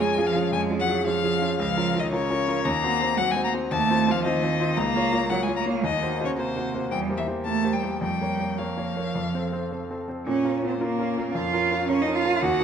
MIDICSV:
0, 0, Header, 1, 4, 480
1, 0, Start_track
1, 0, Key_signature, -5, "minor"
1, 0, Tempo, 532387
1, 1440, Time_signature, 4, 2, 24, 8
1, 6720, Tempo, 561272
1, 9120, Tempo, 538600
1, 11239, End_track
2, 0, Start_track
2, 0, Title_t, "Violin"
2, 0, Program_c, 0, 40
2, 0, Note_on_c, 0, 80, 113
2, 240, Note_on_c, 0, 77, 111
2, 254, Note_off_c, 0, 80, 0
2, 469, Note_off_c, 0, 77, 0
2, 474, Note_on_c, 0, 80, 118
2, 546, Note_off_c, 0, 80, 0
2, 718, Note_on_c, 0, 78, 110
2, 953, Note_off_c, 0, 78, 0
2, 958, Note_on_c, 0, 77, 117
2, 1428, Note_off_c, 0, 77, 0
2, 1437, Note_on_c, 0, 77, 120
2, 1800, Note_on_c, 0, 75, 95
2, 1813, Note_off_c, 0, 77, 0
2, 1905, Note_off_c, 0, 75, 0
2, 1910, Note_on_c, 0, 73, 124
2, 2390, Note_on_c, 0, 82, 125
2, 2404, Note_off_c, 0, 73, 0
2, 2866, Note_on_c, 0, 78, 127
2, 2880, Note_off_c, 0, 82, 0
2, 2986, Note_on_c, 0, 80, 114
2, 3000, Note_off_c, 0, 78, 0
2, 3098, Note_off_c, 0, 80, 0
2, 3103, Note_on_c, 0, 82, 115
2, 3175, Note_off_c, 0, 82, 0
2, 3340, Note_on_c, 0, 81, 127
2, 3710, Note_on_c, 0, 77, 112
2, 3723, Note_off_c, 0, 81, 0
2, 3820, Note_off_c, 0, 77, 0
2, 3825, Note_on_c, 0, 75, 114
2, 4301, Note_on_c, 0, 82, 119
2, 4314, Note_off_c, 0, 75, 0
2, 4780, Note_on_c, 0, 78, 114
2, 4793, Note_off_c, 0, 82, 0
2, 4896, Note_on_c, 0, 80, 98
2, 4909, Note_off_c, 0, 78, 0
2, 5008, Note_off_c, 0, 80, 0
2, 5014, Note_on_c, 0, 82, 111
2, 5086, Note_off_c, 0, 82, 0
2, 5261, Note_on_c, 0, 75, 107
2, 5625, Note_off_c, 0, 75, 0
2, 5634, Note_on_c, 0, 73, 99
2, 5683, Note_off_c, 0, 73, 0
2, 5750, Note_on_c, 0, 72, 102
2, 6224, Note_off_c, 0, 72, 0
2, 6231, Note_on_c, 0, 79, 95
2, 6303, Note_off_c, 0, 79, 0
2, 6469, Note_on_c, 0, 76, 97
2, 6541, Note_off_c, 0, 76, 0
2, 6713, Note_on_c, 0, 81, 105
2, 6959, Note_on_c, 0, 79, 86
2, 6971, Note_off_c, 0, 81, 0
2, 7197, Note_off_c, 0, 79, 0
2, 7202, Note_on_c, 0, 79, 94
2, 7684, Note_on_c, 0, 77, 90
2, 7697, Note_off_c, 0, 79, 0
2, 8885, Note_off_c, 0, 77, 0
2, 9125, Note_on_c, 0, 73, 84
2, 9461, Note_off_c, 0, 73, 0
2, 9488, Note_on_c, 0, 72, 76
2, 9614, Note_on_c, 0, 70, 89
2, 9627, Note_off_c, 0, 72, 0
2, 10092, Note_on_c, 0, 77, 92
2, 10106, Note_off_c, 0, 70, 0
2, 10571, Note_on_c, 0, 73, 109
2, 10584, Note_off_c, 0, 77, 0
2, 10692, Note_on_c, 0, 75, 96
2, 10705, Note_off_c, 0, 73, 0
2, 10803, Note_off_c, 0, 75, 0
2, 10808, Note_on_c, 0, 77, 103
2, 11040, Note_on_c, 0, 78, 125
2, 11054, Note_off_c, 0, 77, 0
2, 11239, Note_off_c, 0, 78, 0
2, 11239, End_track
3, 0, Start_track
3, 0, Title_t, "Grand piano"
3, 0, Program_c, 1, 0
3, 0, Control_c, 1, 64, 127
3, 0, Note_on_c, 1, 61, 68
3, 0, Note_on_c, 1, 65, 62
3, 0, Note_on_c, 1, 68, 59
3, 2, Note_off_c, 1, 68, 0
3, 2, Note_on_c, 1, 68, 66
3, 142, Note_off_c, 1, 61, 0
3, 144, Note_off_c, 1, 65, 0
3, 146, Note_off_c, 1, 68, 0
3, 159, Note_on_c, 1, 61, 63
3, 161, Note_on_c, 1, 65, 66
3, 166, Note_on_c, 1, 68, 74
3, 302, Note_off_c, 1, 61, 0
3, 305, Note_off_c, 1, 65, 0
3, 308, Note_off_c, 1, 68, 0
3, 315, Note_on_c, 1, 61, 64
3, 321, Note_on_c, 1, 65, 64
3, 323, Note_on_c, 1, 68, 63
3, 462, Note_off_c, 1, 61, 0
3, 466, Note_off_c, 1, 65, 0
3, 467, Note_off_c, 1, 68, 0
3, 470, Note_on_c, 1, 41, 72
3, 632, Note_off_c, 1, 41, 0
3, 635, Note_on_c, 1, 61, 65
3, 638, Note_on_c, 1, 65, 60
3, 642, Note_on_c, 1, 68, 63
3, 783, Note_off_c, 1, 61, 0
3, 784, Note_off_c, 1, 65, 0
3, 786, Note_off_c, 1, 68, 0
3, 797, Note_on_c, 1, 61, 64
3, 797, Note_on_c, 1, 65, 59
3, 802, Note_on_c, 1, 68, 70
3, 938, Note_off_c, 1, 61, 0
3, 942, Note_off_c, 1, 65, 0
3, 946, Note_off_c, 1, 68, 0
3, 951, Note_on_c, 1, 61, 59
3, 956, Note_on_c, 1, 65, 59
3, 961, Note_on_c, 1, 68, 57
3, 1099, Note_off_c, 1, 61, 0
3, 1102, Note_off_c, 1, 65, 0
3, 1105, Note_off_c, 1, 68, 0
3, 1116, Note_on_c, 1, 61, 55
3, 1117, Note_on_c, 1, 65, 65
3, 1123, Note_on_c, 1, 68, 68
3, 1262, Note_off_c, 1, 61, 0
3, 1262, Note_off_c, 1, 65, 0
3, 1265, Note_off_c, 1, 68, 0
3, 1276, Note_on_c, 1, 61, 57
3, 1278, Note_on_c, 1, 65, 58
3, 1281, Note_on_c, 1, 68, 54
3, 1422, Note_off_c, 1, 61, 0
3, 1423, Note_off_c, 1, 65, 0
3, 1424, Note_off_c, 1, 68, 0
3, 1436, Note_on_c, 1, 37, 80
3, 1457, Control_c, 1, 64, 0
3, 1593, Note_off_c, 1, 37, 0
3, 1595, Note_on_c, 1, 61, 58
3, 1598, Note_on_c, 1, 65, 60
3, 1599, Note_on_c, 1, 70, 70
3, 1613, Control_c, 1, 64, 127
3, 1740, Note_off_c, 1, 61, 0
3, 1743, Note_off_c, 1, 65, 0
3, 1744, Note_off_c, 1, 70, 0
3, 1754, Note_on_c, 1, 61, 57
3, 1758, Note_on_c, 1, 65, 62
3, 1763, Note_on_c, 1, 70, 67
3, 1900, Note_off_c, 1, 61, 0
3, 1902, Note_off_c, 1, 65, 0
3, 1905, Note_off_c, 1, 70, 0
3, 1915, Note_on_c, 1, 61, 69
3, 1917, Note_on_c, 1, 65, 64
3, 1922, Note_on_c, 1, 70, 76
3, 2060, Note_off_c, 1, 61, 0
3, 2061, Note_off_c, 1, 65, 0
3, 2064, Note_off_c, 1, 70, 0
3, 2074, Note_on_c, 1, 61, 63
3, 2077, Note_on_c, 1, 65, 63
3, 2082, Note_on_c, 1, 70, 79
3, 2219, Note_off_c, 1, 61, 0
3, 2220, Note_off_c, 1, 65, 0
3, 2223, Note_off_c, 1, 70, 0
3, 2234, Note_on_c, 1, 61, 69
3, 2238, Note_on_c, 1, 65, 66
3, 2241, Note_on_c, 1, 70, 71
3, 2379, Note_off_c, 1, 61, 0
3, 2381, Note_off_c, 1, 65, 0
3, 2382, Note_off_c, 1, 70, 0
3, 2390, Note_on_c, 1, 39, 88
3, 2413, Control_c, 1, 64, 0
3, 2547, Note_off_c, 1, 39, 0
3, 2554, Note_on_c, 1, 60, 59
3, 2556, Note_on_c, 1, 66, 65
3, 2560, Note_on_c, 1, 72, 70
3, 2582, Control_c, 1, 64, 127
3, 2694, Note_off_c, 1, 60, 0
3, 2700, Note_off_c, 1, 66, 0
3, 2701, Note_off_c, 1, 72, 0
3, 2708, Note_on_c, 1, 60, 63
3, 2714, Note_on_c, 1, 66, 58
3, 2718, Note_on_c, 1, 72, 64
3, 2855, Note_off_c, 1, 60, 0
3, 2858, Note_off_c, 1, 66, 0
3, 2861, Note_off_c, 1, 72, 0
3, 2869, Note_on_c, 1, 60, 58
3, 2873, Note_on_c, 1, 66, 62
3, 2876, Note_on_c, 1, 72, 68
3, 3013, Note_off_c, 1, 60, 0
3, 3016, Note_off_c, 1, 66, 0
3, 3019, Note_off_c, 1, 72, 0
3, 3026, Note_on_c, 1, 60, 64
3, 3029, Note_on_c, 1, 66, 66
3, 3034, Note_on_c, 1, 72, 59
3, 3174, Note_off_c, 1, 60, 0
3, 3176, Note_off_c, 1, 66, 0
3, 3178, Note_off_c, 1, 72, 0
3, 3191, Note_on_c, 1, 60, 58
3, 3193, Note_on_c, 1, 66, 55
3, 3196, Note_on_c, 1, 72, 67
3, 3337, Note_off_c, 1, 60, 0
3, 3338, Note_off_c, 1, 66, 0
3, 3340, Note_off_c, 1, 72, 0
3, 3348, Note_on_c, 1, 39, 91
3, 3373, Control_c, 1, 64, 0
3, 3506, Note_off_c, 1, 39, 0
3, 3509, Control_c, 1, 64, 127
3, 3513, Note_on_c, 1, 60, 52
3, 3517, Note_on_c, 1, 65, 60
3, 3522, Note_on_c, 1, 72, 67
3, 3658, Note_off_c, 1, 60, 0
3, 3660, Note_off_c, 1, 65, 0
3, 3662, Note_off_c, 1, 72, 0
3, 3673, Note_on_c, 1, 60, 58
3, 3678, Note_on_c, 1, 65, 64
3, 3680, Note_on_c, 1, 72, 66
3, 3815, Note_off_c, 1, 60, 0
3, 3820, Note_off_c, 1, 65, 0
3, 3821, Note_off_c, 1, 72, 0
3, 3829, Note_on_c, 1, 60, 67
3, 3834, Note_on_c, 1, 65, 64
3, 3839, Note_on_c, 1, 72, 75
3, 3974, Note_off_c, 1, 60, 0
3, 3977, Note_off_c, 1, 65, 0
3, 3979, Note_off_c, 1, 72, 0
3, 3994, Note_on_c, 1, 60, 68
3, 3997, Note_on_c, 1, 65, 62
3, 4000, Note_on_c, 1, 72, 75
3, 4135, Note_off_c, 1, 60, 0
3, 4137, Note_off_c, 1, 65, 0
3, 4138, Note_off_c, 1, 72, 0
3, 4149, Note_on_c, 1, 60, 61
3, 4152, Note_on_c, 1, 65, 60
3, 4157, Note_on_c, 1, 72, 70
3, 4291, Note_off_c, 1, 60, 0
3, 4293, Note_off_c, 1, 65, 0
3, 4296, Note_off_c, 1, 72, 0
3, 4306, Note_on_c, 1, 37, 83
3, 4325, Control_c, 1, 64, 0
3, 4460, Note_off_c, 1, 37, 0
3, 4468, Note_on_c, 1, 58, 63
3, 4473, Note_on_c, 1, 65, 65
3, 4477, Note_on_c, 1, 73, 77
3, 4481, Control_c, 1, 64, 127
3, 4605, Note_off_c, 1, 58, 0
3, 4609, Note_off_c, 1, 65, 0
3, 4614, Note_off_c, 1, 73, 0
3, 4619, Note_on_c, 1, 58, 61
3, 4622, Note_on_c, 1, 65, 59
3, 4627, Note_on_c, 1, 73, 68
3, 4764, Note_off_c, 1, 58, 0
3, 4765, Note_off_c, 1, 65, 0
3, 4768, Note_off_c, 1, 73, 0
3, 4783, Note_on_c, 1, 58, 58
3, 4787, Note_on_c, 1, 65, 56
3, 4790, Note_on_c, 1, 73, 65
3, 4927, Note_off_c, 1, 58, 0
3, 4929, Note_off_c, 1, 65, 0
3, 4930, Note_off_c, 1, 73, 0
3, 4941, Note_on_c, 1, 58, 52
3, 4945, Note_on_c, 1, 65, 56
3, 4948, Note_on_c, 1, 73, 61
3, 5087, Note_off_c, 1, 58, 0
3, 5089, Note_off_c, 1, 65, 0
3, 5091, Note_off_c, 1, 73, 0
3, 5102, Note_on_c, 1, 58, 61
3, 5106, Note_on_c, 1, 65, 58
3, 5111, Note_on_c, 1, 73, 58
3, 5250, Note_off_c, 1, 58, 0
3, 5252, Note_off_c, 1, 65, 0
3, 5255, Note_off_c, 1, 73, 0
3, 5262, Note_on_c, 1, 39, 78
3, 5284, Control_c, 1, 64, 0
3, 5423, Note_off_c, 1, 39, 0
3, 5429, Note_on_c, 1, 58, 54
3, 5432, Note_on_c, 1, 66, 56
3, 5434, Note_on_c, 1, 72, 68
3, 5450, Control_c, 1, 64, 127
3, 5577, Note_off_c, 1, 58, 0
3, 5578, Note_off_c, 1, 66, 0
3, 5580, Note_off_c, 1, 72, 0
3, 5595, Note_on_c, 1, 58, 61
3, 5599, Note_on_c, 1, 66, 61
3, 5602, Note_on_c, 1, 72, 67
3, 5741, Note_off_c, 1, 58, 0
3, 5743, Note_off_c, 1, 66, 0
3, 5745, Note_off_c, 1, 72, 0
3, 5754, Note_on_c, 1, 58, 57
3, 5760, Note_on_c, 1, 66, 57
3, 5765, Note_on_c, 1, 72, 63
3, 5901, Note_off_c, 1, 58, 0
3, 5904, Note_off_c, 1, 66, 0
3, 5907, Note_off_c, 1, 72, 0
3, 5916, Note_on_c, 1, 58, 61
3, 5919, Note_on_c, 1, 66, 59
3, 5922, Note_on_c, 1, 72, 74
3, 6061, Note_off_c, 1, 58, 0
3, 6062, Note_off_c, 1, 66, 0
3, 6064, Note_off_c, 1, 72, 0
3, 6080, Note_on_c, 1, 58, 58
3, 6084, Note_on_c, 1, 66, 57
3, 6086, Note_on_c, 1, 72, 63
3, 6223, Note_off_c, 1, 58, 0
3, 6225, Note_off_c, 1, 66, 0
3, 6226, Note_off_c, 1, 72, 0
3, 6236, Note_on_c, 1, 40, 74
3, 6255, Control_c, 1, 64, 0
3, 6392, Note_off_c, 1, 40, 0
3, 6394, Note_on_c, 1, 58, 53
3, 6396, Note_on_c, 1, 67, 56
3, 6400, Control_c, 1, 64, 127
3, 6402, Note_on_c, 1, 72, 54
3, 6541, Note_off_c, 1, 58, 0
3, 6542, Note_off_c, 1, 67, 0
3, 6545, Note_off_c, 1, 72, 0
3, 6557, Note_on_c, 1, 58, 47
3, 6559, Note_on_c, 1, 67, 49
3, 6564, Note_on_c, 1, 72, 58
3, 6705, Note_off_c, 1, 58, 0
3, 6706, Note_off_c, 1, 67, 0
3, 6709, Note_off_c, 1, 72, 0
3, 6720, Note_on_c, 1, 58, 52
3, 6726, Note_on_c, 1, 67, 52
3, 6728, Note_on_c, 1, 72, 55
3, 6863, Note_off_c, 1, 58, 0
3, 6866, Note_off_c, 1, 67, 0
3, 6867, Note_off_c, 1, 72, 0
3, 6879, Note_on_c, 1, 58, 51
3, 6883, Note_on_c, 1, 67, 48
3, 6886, Note_on_c, 1, 72, 57
3, 7023, Note_off_c, 1, 58, 0
3, 7025, Note_off_c, 1, 67, 0
3, 7027, Note_off_c, 1, 72, 0
3, 7040, Note_on_c, 1, 58, 46
3, 7043, Note_on_c, 1, 67, 53
3, 7045, Note_on_c, 1, 72, 52
3, 7185, Note_off_c, 1, 58, 0
3, 7187, Note_off_c, 1, 67, 0
3, 7188, Note_off_c, 1, 72, 0
3, 7199, Note_on_c, 1, 41, 72
3, 7220, Control_c, 1, 64, 0
3, 7352, Control_c, 1, 64, 127
3, 7358, Note_off_c, 1, 41, 0
3, 7365, Note_on_c, 1, 58, 52
3, 7370, Note_on_c, 1, 70, 47
3, 7374, Note_on_c, 1, 73, 51
3, 7511, Note_off_c, 1, 58, 0
3, 7513, Note_off_c, 1, 70, 0
3, 7515, Note_off_c, 1, 73, 0
3, 7529, Note_on_c, 1, 58, 50
3, 7532, Note_on_c, 1, 70, 52
3, 7537, Note_on_c, 1, 73, 52
3, 7674, Note_off_c, 1, 58, 0
3, 7675, Note_off_c, 1, 70, 0
3, 7677, Note_off_c, 1, 73, 0
3, 7690, Note_on_c, 1, 58, 52
3, 7694, Note_on_c, 1, 70, 47
3, 7695, Note_on_c, 1, 73, 61
3, 7834, Note_off_c, 1, 58, 0
3, 7836, Note_off_c, 1, 70, 0
3, 7836, Note_off_c, 1, 73, 0
3, 7849, Note_on_c, 1, 58, 55
3, 7852, Note_on_c, 1, 70, 55
3, 7856, Note_on_c, 1, 73, 61
3, 7993, Note_off_c, 1, 58, 0
3, 7995, Note_off_c, 1, 70, 0
3, 7997, Note_off_c, 1, 73, 0
3, 8012, Note_on_c, 1, 58, 53
3, 8015, Note_on_c, 1, 70, 52
3, 8018, Note_on_c, 1, 73, 54
3, 8154, Note_off_c, 1, 58, 0
3, 8156, Note_off_c, 1, 70, 0
3, 8157, Note_off_c, 1, 73, 0
3, 8173, Note_on_c, 1, 41, 66
3, 8185, Control_c, 1, 64, 0
3, 8326, Note_off_c, 1, 41, 0
3, 8334, Note_on_c, 1, 60, 52
3, 8338, Note_on_c, 1, 69, 49
3, 8342, Note_on_c, 1, 72, 58
3, 8352, Control_c, 1, 64, 127
3, 8475, Note_off_c, 1, 60, 0
3, 8477, Note_off_c, 1, 69, 0
3, 8479, Note_off_c, 1, 72, 0
3, 8490, Note_on_c, 1, 60, 52
3, 8493, Note_on_c, 1, 69, 49
3, 8497, Note_on_c, 1, 72, 54
3, 8633, Note_off_c, 1, 60, 0
3, 8634, Note_off_c, 1, 69, 0
3, 8636, Note_off_c, 1, 72, 0
3, 8654, Note_on_c, 1, 60, 45
3, 8659, Note_on_c, 1, 69, 46
3, 8659, Note_on_c, 1, 72, 51
3, 8794, Note_off_c, 1, 60, 0
3, 8797, Note_off_c, 1, 69, 0
3, 8798, Note_off_c, 1, 72, 0
3, 8814, Note_on_c, 1, 60, 47
3, 8818, Note_on_c, 1, 69, 47
3, 8821, Note_on_c, 1, 72, 49
3, 8955, Note_off_c, 1, 60, 0
3, 8957, Note_off_c, 1, 69, 0
3, 8958, Note_off_c, 1, 72, 0
3, 8968, Note_on_c, 1, 60, 51
3, 8973, Note_on_c, 1, 69, 42
3, 8977, Note_on_c, 1, 72, 50
3, 9108, Note_off_c, 1, 60, 0
3, 9111, Note_off_c, 1, 69, 0
3, 9113, Note_off_c, 1, 72, 0
3, 9125, Note_on_c, 1, 46, 83
3, 9139, Control_c, 1, 64, 0
3, 9279, Control_c, 1, 64, 127
3, 9280, Note_off_c, 1, 46, 0
3, 9283, Note_on_c, 1, 61, 53
3, 9286, Note_on_c, 1, 65, 54
3, 9289, Note_on_c, 1, 70, 60
3, 9428, Note_off_c, 1, 61, 0
3, 9430, Note_off_c, 1, 65, 0
3, 9432, Note_off_c, 1, 70, 0
3, 9446, Note_on_c, 1, 61, 55
3, 9449, Note_on_c, 1, 65, 52
3, 9453, Note_on_c, 1, 70, 55
3, 9590, Note_off_c, 1, 61, 0
3, 9592, Note_off_c, 1, 65, 0
3, 9594, Note_off_c, 1, 70, 0
3, 9604, Note_on_c, 1, 61, 60
3, 9609, Note_on_c, 1, 65, 65
3, 9612, Note_on_c, 1, 70, 59
3, 9750, Note_off_c, 1, 61, 0
3, 9753, Note_off_c, 1, 65, 0
3, 9754, Note_off_c, 1, 70, 0
3, 9769, Note_on_c, 1, 61, 66
3, 9771, Note_on_c, 1, 65, 64
3, 9774, Note_on_c, 1, 70, 66
3, 9914, Note_off_c, 1, 61, 0
3, 9915, Note_off_c, 1, 65, 0
3, 9917, Note_off_c, 1, 70, 0
3, 9936, Note_on_c, 1, 61, 62
3, 9937, Note_on_c, 1, 65, 60
3, 9943, Note_on_c, 1, 70, 67
3, 10078, Note_off_c, 1, 61, 0
3, 10078, Note_off_c, 1, 65, 0
3, 10082, Note_off_c, 1, 70, 0
3, 10091, Note_on_c, 1, 41, 69
3, 10246, Note_off_c, 1, 41, 0
3, 10254, Note_on_c, 1, 61, 64
3, 10257, Note_on_c, 1, 65, 64
3, 10260, Note_on_c, 1, 70, 68
3, 10395, Note_off_c, 1, 61, 0
3, 10397, Note_off_c, 1, 65, 0
3, 10398, Note_off_c, 1, 70, 0
3, 10410, Note_on_c, 1, 61, 61
3, 10413, Note_on_c, 1, 65, 58
3, 10418, Note_on_c, 1, 70, 66
3, 10552, Note_off_c, 1, 61, 0
3, 10554, Note_off_c, 1, 65, 0
3, 10556, Note_off_c, 1, 70, 0
3, 10570, Note_on_c, 1, 61, 61
3, 10575, Note_on_c, 1, 65, 60
3, 10577, Note_on_c, 1, 70, 63
3, 10712, Note_off_c, 1, 61, 0
3, 10714, Note_off_c, 1, 65, 0
3, 10715, Note_off_c, 1, 70, 0
3, 10732, Note_on_c, 1, 61, 65
3, 10734, Note_on_c, 1, 65, 57
3, 10739, Note_on_c, 1, 70, 69
3, 10873, Note_off_c, 1, 61, 0
3, 10874, Note_off_c, 1, 65, 0
3, 10876, Note_off_c, 1, 70, 0
3, 10890, Note_on_c, 1, 61, 62
3, 10893, Note_on_c, 1, 65, 60
3, 10896, Note_on_c, 1, 70, 65
3, 11031, Note_off_c, 1, 61, 0
3, 11032, Note_off_c, 1, 65, 0
3, 11034, Note_off_c, 1, 70, 0
3, 11049, Note_on_c, 1, 39, 89
3, 11061, Control_c, 1, 64, 0
3, 11200, Note_off_c, 1, 39, 0
3, 11205, Note_on_c, 1, 63, 68
3, 11209, Note_on_c, 1, 66, 67
3, 11221, Control_c, 1, 64, 127
3, 11239, Note_off_c, 1, 63, 0
3, 11239, Note_off_c, 1, 66, 0
3, 11239, End_track
4, 0, Start_track
4, 0, Title_t, "Cello"
4, 0, Program_c, 2, 42
4, 0, Note_on_c, 2, 56, 95
4, 235, Note_off_c, 2, 56, 0
4, 241, Note_on_c, 2, 53, 88
4, 477, Note_off_c, 2, 53, 0
4, 481, Note_on_c, 2, 56, 97
4, 722, Note_on_c, 2, 54, 95
4, 736, Note_off_c, 2, 56, 0
4, 960, Note_on_c, 2, 53, 96
4, 974, Note_off_c, 2, 54, 0
4, 1433, Note_off_c, 2, 53, 0
4, 1438, Note_on_c, 2, 53, 94
4, 1799, Note_on_c, 2, 51, 80
4, 1813, Note_off_c, 2, 53, 0
4, 1915, Note_off_c, 2, 51, 0
4, 1921, Note_on_c, 2, 49, 85
4, 2404, Note_on_c, 2, 58, 104
4, 2417, Note_off_c, 2, 49, 0
4, 2873, Note_on_c, 2, 54, 93
4, 2887, Note_off_c, 2, 58, 0
4, 2995, Note_on_c, 2, 56, 91
4, 3008, Note_off_c, 2, 54, 0
4, 3110, Note_off_c, 2, 56, 0
4, 3116, Note_on_c, 2, 58, 86
4, 3188, Note_off_c, 2, 58, 0
4, 3357, Note_on_c, 2, 57, 93
4, 3718, Note_on_c, 2, 53, 86
4, 3732, Note_off_c, 2, 57, 0
4, 3829, Note_on_c, 2, 51, 98
4, 3842, Note_off_c, 2, 53, 0
4, 4305, Note_on_c, 2, 58, 121
4, 4319, Note_off_c, 2, 51, 0
4, 4770, Note_off_c, 2, 58, 0
4, 4775, Note_on_c, 2, 54, 94
4, 4890, Note_off_c, 2, 54, 0
4, 4896, Note_on_c, 2, 56, 78
4, 4945, Note_off_c, 2, 56, 0
4, 5021, Note_on_c, 2, 58, 102
4, 5262, Note_on_c, 2, 51, 88
4, 5275, Note_off_c, 2, 58, 0
4, 5631, Note_on_c, 2, 49, 82
4, 5644, Note_off_c, 2, 51, 0
4, 5750, Note_on_c, 2, 48, 75
4, 5764, Note_off_c, 2, 49, 0
4, 6232, Note_off_c, 2, 48, 0
4, 6237, Note_on_c, 2, 55, 91
4, 6462, Note_off_c, 2, 55, 0
4, 6467, Note_on_c, 2, 52, 72
4, 6539, Note_off_c, 2, 52, 0
4, 6712, Note_on_c, 2, 57, 95
4, 6958, Note_on_c, 2, 55, 73
4, 6971, Note_off_c, 2, 57, 0
4, 7191, Note_off_c, 2, 55, 0
4, 7197, Note_on_c, 2, 55, 82
4, 7687, Note_on_c, 2, 53, 70
4, 7699, Note_off_c, 2, 55, 0
4, 8886, Note_off_c, 2, 53, 0
4, 9120, Note_on_c, 2, 61, 94
4, 9458, Note_off_c, 2, 61, 0
4, 9485, Note_on_c, 2, 60, 91
4, 9534, Note_off_c, 2, 60, 0
4, 9601, Note_on_c, 2, 58, 98
4, 10078, Note_off_c, 2, 58, 0
4, 10092, Note_on_c, 2, 65, 102
4, 10559, Note_off_c, 2, 65, 0
4, 10569, Note_on_c, 2, 61, 96
4, 10689, Note_on_c, 2, 63, 101
4, 10703, Note_off_c, 2, 61, 0
4, 10808, Note_on_c, 2, 65, 108
4, 10821, Note_off_c, 2, 63, 0
4, 11043, Note_on_c, 2, 66, 107
4, 11056, Note_off_c, 2, 65, 0
4, 11239, Note_off_c, 2, 66, 0
4, 11239, End_track
0, 0, End_of_file